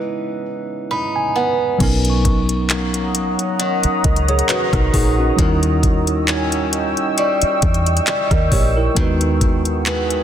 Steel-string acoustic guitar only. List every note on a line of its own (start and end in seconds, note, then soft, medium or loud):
0.00 1.80 C#3 medium
0.00 1.90 E3 medium
0.00 1.35 B3 medium
0.00 0.90 D#4 medium
0.91 2.40 D#4 medium
1.36 2.40 B3 medium
2.70 6.20 A#3 medium
3.59 4.49 D#3 medium
4.49 5.39 D#3 medium
5.39 8.95 D#3 medium
6.28 9.06 C#4 medium
7.18 8.06 G3 medium
8.07 9.06 G3 medium
8.97 10.23 D#3 medium
9.86 10.23 B3 medium